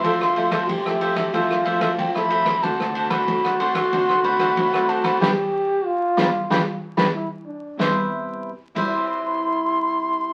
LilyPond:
<<
  \new Staff \with { instrumentName = "Flute" } { \time 4/4 \key c \major \tempo 4 = 93 c'''4. r4. g''16 b''8. | a''8. b''8. c'''4 b''4 a''16 b''16 | b''16 r4 r16 b''16 r16 b''16 r8 b''16 r4 | c'''16 r4 r16 c'''2~ c'''8 | }
  \new Staff \with { instrumentName = "Cavaquinho" } { \time 4/4 \key c \major <f' a' c'' e''>8 <f' a' c'' e''>16 <f' a' c'' e''>16 r16 <a' c'' e''>16 <f' a' c'' e''>16 <a' c'' e''>16 <f' a' c'' e''>8 <f' a' c'' e''>16 <f' a' c'' e''>16 r16 <a' c'' e''>16 <f' a' c'' e''>16 <a' c'' e''>16 | <d' c'' d'' fis''>8 <d' c'' d'' fis''>16 <d' c'' d'' fis''>16 r16 <c'' d'' fis''>16 <d' c'' d'' fis''>16 <c'' d'' fis''>16 <d' c'' d'' fis''>8 <d' c'' d'' fis''>16 <d' c'' d'' fis''>16 r16 <c'' d'' fis''>16 <d' c'' d'' fis''>16 <c'' d'' fis''>16 | <g' b' d''>16 r4 r16 <g' b' d''>16 r16 <g' b' d''>16 r8 <g' b' d''>16 r4 | <e' b' c'' e''>16 r4 r16 <e' c'' e''>2~ <e' c'' e''>8 | }
  \new Staff \with { instrumentName = "Trombone" } { \time 4/4 \key c \major f'4 g'4 f'4. r8 | fis'1 | g'4 f'4. r8 e'8 d'8 | e'8 r4 e'2~ e'8 | }
  \new Staff \with { instrumentName = "Nylon-string guitar" } { \time 4/4 \key c \major << { <f a e'>16 r16 <f a>8. <f a e'>8. <f a e'>8 <f a>8. <f a e'>8. | <a c' fis'>16 <a c' fis'>8. <a c' fis'>16 r16 <a c' fis'>16 r16 <a c' fis'>16 r16 <a c' fis'>8. <a c' fis'>8. | <f g b>16 r4 r16 <f g b>16 r16 <f g b>16 r8 <f g b>16 r4 | <c g b e'>8 r4 <c g e'>2~ <c g e'>8 | } \\ { c4 c4 c4 c4 | d4 a,4 d4 a,4 | r1 | r1 | } >> }
  \new DrumStaff \with { instrumentName = "Drums" } \drummode { \time 4/4 <bd cymr>16 ss16 cymr16 <bd cymr ss>16 <bd cymr>16 ss16 cymr16 <bd cymr ss>16 <bd cymr>16 ss16 cymr16 <bd cymr ss>16 <bd cymr>16 ss16 cymr16 <bd cymr ss>16 | <bd cymr>16 ss16 cymr16 <bd cymr ss>16 <bd cymr>16 ss16 cymr16 <bd cymr ss>16 <bd cymr>16 ss16 cymr16 <bd cymr ss>16 <bd cymr>16 ss16 cymr16 <bd cymr ss>16 | <bd sn>4 r8 <bd sn>8 <bd sn>8. <bd sn>16 r4 | <bd sn>4 r8 <cymc bd>8 r4 r4 | }
>>